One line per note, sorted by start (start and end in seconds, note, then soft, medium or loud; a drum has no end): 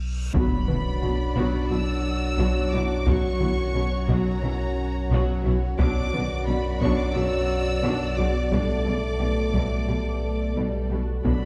0.00 0.30 B1 medium
0.00 reverse cymbal medium
0.33 5.75 B1 medium
0.33 0.42 B1 medium
0.33 5.76 F#2 medium
0.33 0.42 B2 medium
0.33 5.75 F#3 medium
0.33 0.66 F#3 medium
0.33 5.76 F#3 medium
0.33 0.55 B3 medium
0.33 3.02 D4 medium
0.33 0.65 F#4 medium
0.33 5.75 F#4 medium
0.33 5.76 F#4 medium
0.33 3.03 D5 medium
0.33 5.75 F#5 medium
0.33 1.66 B5 medium
0.33 taiko medium
0.33 impact medium
0.68 0.76 B1 soft
0.68 0.76 B2 soft
0.68 0.76 F#3 soft
0.68 0.76 E4 medium
0.68 0.88 B4 medium
0.68 taiko mid soft
1.02 1.10 B1 soft
1.02 1.10 B2 medium
1.02 1.10 F#3 soft
1.02 1.23 F#4 medium
1.02 1.11 F#4 soft
1.36 1.44 B1 medium
1.36 1.44 B2 medium
1.36 1.68 F#3 medium
1.36 1.57 B3 medium
1.36 1.68 F#4 medium
1.36 taiko medium
1.70 1.79 B1 soft
1.70 1.79 B2 medium
1.70 1.79 F#3 soft
1.70 1.79 E4 soft
1.70 1.91 F#4 medium
1.70 2.70 E6 loud
2.38 2.47 B1 medium
2.38 2.47 B2 medium
2.38 2.70 F#3 medium
2.38 2.59 B3 medium
2.38 2.70 F#4 medium
2.72 2.81 B1 medium
2.72 2.80 B2 medium
2.72 2.81 F#3 medium
2.72 2.81 E4 medium
2.72 2.93 F#4 medium
2.72 3.07 D6 medium
3.06 3.15 B1 medium
3.06 3.14 B2 medium
3.06 3.38 F#3 medium
3.06 3.27 F#3 medium
3.06 5.75 C#4 medium
3.06 5.80 C#4 medium
3.06 3.38 F#4 medium
3.06 5.80 C#5 medium
3.06 4.09 C#6 loud
3.06 taiko loud
3.40 3.49 B1 medium
3.40 3.48 B2 soft
3.40 3.49 F#3 medium
3.40 3.49 E4 soft
3.40 3.61 F#4 medium
3.40 taiko mid soft
3.74 3.83 B1 medium
3.74 3.82 B2 medium
3.74 3.83 F#3 soft
3.74 3.96 C#4 medium
3.74 3.82 F#4 medium
4.08 4.17 B1 medium
4.08 4.16 B2 medium
4.08 4.29 F#3 medium
4.08 4.41 F#3 medium
4.08 4.41 F#4 medium
4.08 5.45 A#5 medium
4.08 taiko medium
4.43 4.51 B1 medium
4.43 4.51 B2 medium
4.43 4.52 F#3 medium
4.43 4.64 C#4 medium
4.43 4.52 E4 soft
5.11 5.19 B1 medium
5.11 5.19 B2 medium
5.11 5.32 F#3 medium
5.11 5.43 F#3 medium
5.11 5.43 F#4 medium
5.45 5.53 B1 medium
5.45 5.53 B2 medium
5.45 5.53 F#3 medium
5.45 5.66 C#4 medium
5.45 5.53 E4 medium
5.79 5.87 B1 medium
5.79 11.21 B1 medium
5.79 8.35 F#2 medium
5.79 5.87 B2 medium
5.79 8.35 F#3 medium
5.79 6.11 F#3 medium
5.79 8.48 F#3 medium
5.79 6.00 B3 medium
5.79 11.25 B3 medium
5.79 6.11 D4 medium
5.79 8.48 F#4 medium
5.79 8.49 F#4 medium
5.79 11.05 D5 medium
5.79 11.23 D5 medium
5.79 10.90 D5 medium
5.79 6.43 D6 loud
5.79 taiko loud
6.13 6.22 B1 medium
6.13 6.21 B2 medium
6.13 6.21 C#3 medium
6.13 6.22 F#3 medium
6.13 6.34 B4 medium
6.13 taiko mid medium
6.47 6.56 B1 medium
6.47 6.55 B2 medium
6.47 6.56 F#3 medium
6.47 6.55 D4 medium
6.47 6.68 F#4 medium
6.47 6.81 B5 medium
6.81 6.89 B1 medium
6.81 6.90 B2 medium
6.81 7.13 F#3 medium
6.81 7.02 B3 medium
6.81 7.13 D4 medium
6.81 6.99 C#6 medium
6.81 taiko medium
6.99 7.16 D6 medium
7.15 7.23 B1 medium
7.15 7.24 B2 medium
7.15 7.24 C#3 medium
7.15 7.24 F#3 medium
7.15 7.36 F#4 medium
7.15 8.17 E6 loud
7.84 7.92 B1 medium
7.84 7.92 B2 medium
7.84 8.16 F#3 medium
7.84 8.04 B3 medium
7.84 8.16 D4 medium
8.17 8.26 B1 soft
8.17 8.26 B2 medium
8.17 8.26 C#3 medium
8.17 8.26 F#3 medium
8.17 8.38 F#4 medium
8.17 8.50 D6 medium
8.51 8.60 B1 medium
8.51 10.89 A2 medium
8.51 8.60 B2 medium
8.51 8.83 G3 medium
8.51 8.72 G3 medium
8.51 10.89 A3 medium
8.51 11.25 A3 medium
8.51 8.84 D4 medium
8.51 11.01 A4 medium
8.51 11.25 A4 medium
8.51 10.52 D6 medium
8.51 taiko medium
8.86 8.94 B1 soft
8.86 8.94 B2 soft
8.86 8.94 C#3 soft
8.86 8.94 G3 soft
8.86 9.06 A4 medium
9.20 9.28 B1 soft
9.20 9.28 B2 soft
9.20 9.52 A3 medium
9.20 9.41 G4 medium
9.54 9.62 B1 medium
9.54 9.62 B2 medium
9.54 9.88 F#3 medium
9.54 9.75 G3 medium
9.54 taiko medium
9.88 9.96 B1 soft
9.88 9.96 B2 soft
9.88 10.23 G3 soft
9.88 10.09 G4 medium
10.23 10.57 A3 medium
10.56 10.65 B1 medium
10.56 10.64 B2 medium
10.56 10.90 G3 medium
10.56 10.77 G3 medium
10.90 10.99 B1 soft
10.90 10.98 B2 soft
10.90 11.25 F#4 medium
10.90 11.11 G4 medium
11.24 11.45 B1 medium
11.24 11.33 B1 medium
11.24 11.45 F#2 medium
11.24 11.33 B2 medium
11.24 11.45 F#3 medium
11.24 11.45 B3 medium
11.24 11.45 D4 medium
11.24 11.45 F#4 soft
11.24 11.45 F#4 medium
11.24 11.45 D5 medium
11.24 11.45 B5 medium
11.24 taiko medium